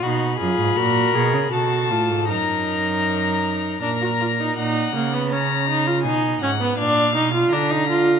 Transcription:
0.03 B2 D#4 F#4 B5
0.39 F#2 F4 G#4
0.59 G#2
0.77 A#2 F#4 A#4
1.15 B2 G#4
1.34 C#3
1.52 B2 F#4 A4 A5
1.90 A2 F4
2.09 G#2
2.28 F#2 D#4 A#4 A#5
3.81 A#2 D4 A#4 A#5
4.01 F#4
4.20 F4
4.40 D#4
4.57 A#2 D#4 F#5
4.95 C#3 A#3
5.14 B3
5.30 C#4 A#5
5.69 D#4
5.87 F4
6.03 B2 D#4 G#5
6.41 G#2 C#4 F#5
6.61 B3
6.78 A#2 D4 F5
7.15 B2 D#4
7.34 F4
7.51 D3 D4 A#5
7.70 D#4
7.89 F4

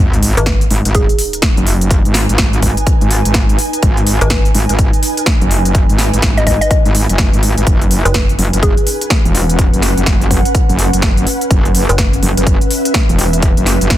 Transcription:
0.00 G#1 D#4, sub drop
0.13 closed hi-hat
0.23 open hi-hat
0.37 G#1 B4, closed hi-hat
0.46 kick, snare, closed hi-hat
0.61 closed hi-hat
0.71 G#1, open hi-hat
0.85 G#1, closed hi-hat
0.93 G#4 B4, kick, closed hi-hat
1.09 closed hi-hat
1.14 G#5
1.19 open hi-hat
1.33 closed hi-hat
1.42 kick, snare, closed hi-hat
1.57 F#1, closed hi-hat
1.67 open hi-hat
1.81 closed hi-hat
1.91 kick, closed hi-hat
2.05 G#1, closed hi-hat
2.14 snare, open hi-hat
2.29 G#1, closed hi-hat
2.38 G#1, kick, snare, closed hi-hat
2.53 closed hi-hat
2.62 G#1, kick, open hi-hat
2.77 closed hi-hat
2.87 kick, closed hi-hat
3.01 G#1, closed hi-hat
3.11 open hi-hat
3.25 G#1, closed hi-hat
3.34 kick, snare, closed hi-hat
3.49 closed hi-hat
3.59 open hi-hat
3.73 closed hi-hat
3.83 G#1, kick, closed hi-hat
3.97 closed hi-hat
4.07 open hi-hat
4.21 G#1 B4, closed hi-hat
4.30 kick, snare, closed hi-hat
4.45 closed hi-hat
4.55 G#1, open hi-hat
4.69 G#1, closed hi-hat
4.79 kick, closed hi-hat
4.93 closed hi-hat
5.03 open hi-hat
5.17 closed hi-hat
5.26 kick, snare, closed hi-hat
5.41 F#1, closed hi-hat
5.51 open hi-hat
5.65 closed hi-hat
5.75 kick, closed hi-hat
5.89 G#1, closed hi-hat
5.98 snare, open hi-hat
6.13 G#1, closed hi-hat
6.22 G#1, kick, snare, closed hi-hat
6.37 D#5, closed hi-hat
6.47 G#1 D#5, kick, open hi-hat
6.61 D#5, closed hi-hat
6.71 D#5, kick, closed hi-hat
6.85 G#1, closed hi-hat
6.95 open hi-hat
7.09 F#1, closed hi-hat
7.18 kick, snare, closed hi-hat
7.33 G#1, closed hi-hat
7.43 open hi-hat
7.57 G#1, closed hi-hat
7.66 F#1 C#4, kick, closed hi-hat
7.81 closed hi-hat
7.91 open hi-hat
8.05 F#1 B4, closed hi-hat
8.14 kick, snare, closed hi-hat
8.29 closed hi-hat
8.39 F#1, open hi-hat
8.53 F#1 F#5, closed hi-hat
8.63 G#4, kick, closed hi-hat
8.77 closed hi-hat
8.87 open hi-hat
9.01 closed hi-hat
9.10 kick, snare, closed hi-hat
9.25 E1, closed hi-hat
9.35 open hi-hat
9.49 closed hi-hat
9.59 kick, closed hi-hat
9.73 F#1, closed hi-hat
9.82 snare, open hi-hat
9.97 F#1, closed hi-hat
10.06 F#1, kick, snare, closed hi-hat
10.21 closed hi-hat
10.31 F#1, kick, open hi-hat
10.45 closed hi-hat
10.55 kick, closed hi-hat
10.69 F#1, closed hi-hat
10.79 open hi-hat
10.93 F#1, closed hi-hat
11.02 kick, snare, closed hi-hat
11.17 closed hi-hat
11.27 open hi-hat
11.41 closed hi-hat
11.51 F#1, kick, closed hi-hat
11.63 E5, closed hi-hat
11.75 open hi-hat
11.89 F#1 B4, closed hi-hat
11.98 kick, snare, closed hi-hat
12.13 closed hi-hat
12.23 F#1, open hi-hat
12.37 F#1, closed hi-hat
12.47 kick, closed hi-hat
12.61 closed hi-hat
12.71 open hi-hat
12.85 closed hi-hat
12.94 kick, snare, closed hi-hat
13.09 E1, closed hi-hat
13.19 open hi-hat
13.33 closed hi-hat
13.42 kick, closed hi-hat
13.57 F#1, closed hi-hat
13.66 snare, open hi-hat
13.81 F#1, closed hi-hat
13.90 F#1, kick, snare, closed hi-hat

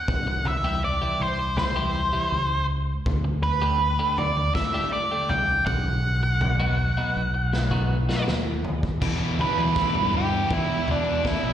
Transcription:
Already playing: F#5
0.08 C2, kick
0.27 muted clean electric guitar stroke
0.45 E5, floor tom, mid tom
0.64 E3 G3 E4 G4
0.83 D5, muted clean electric guitar stroke
1.02 E3 G3 E4 G4
1.20 C2 C5
1.39 muted clean electric guitar stroke
1.57 C5, muted clean electric guitar stroke, snare, floor tom, mid tom
1.76 E3 G3 E4 G4
2.13 E3 G3 E4 G4
2.32 C#2
3.06 D2, kick, floor tom
3.24 muted clean electric guitar stroke
3.43 B4
3.62 D3 A3 D4 G4
3.80 muted clean electric guitar stroke
3.99 D3 A3 D4 G4
4.18 D2 D5, floor tom
4.37 muted clean electric guitar stroke
4.55 E5, muted clean electric guitar stroke, kick, snare
4.74 D3 A3 D4 G4
4.93 D5
5.11 D3 A3 D4 G4
5.29 C2 G5, floor tom
5.66 B1 F#5, kick
6.23 muted clean electric guitar stroke
6.41 floor tom, mid tom
6.60 F#3 B3 D#4 F#4
6.79 muted clean electric guitar stroke
6.97 F#3 B3 D#4 F#4
7.17 B1
7.34 muted clean electric guitar stroke
7.53 muted clean electric guitar stroke, snare
7.71 F#3 B3 D#4 F#4, kick
8.09 F#3 B3 D#4 F#4, snare
8.28 D#2, snare
8.65 floor tom
8.83 kick
9.02 E2 B2 E3, kick, floor tom, crash
9.39 E2 B2 E3 B4, floor tom, mid tom
9.58 E3, floor tom
9.76 E2 B2 E3, kick, snare
9.95 G2, floor tom
10.13 E2 B2 E3 G4, floor tom
10.51 E2 B2 E3 E4, kick, floor tom, mid tom
10.88 E2 B2 E3 D4, floor tom, mid tom
11.25 E2 B2 E3 E4, kick, snare
11.44 B1, floor tom

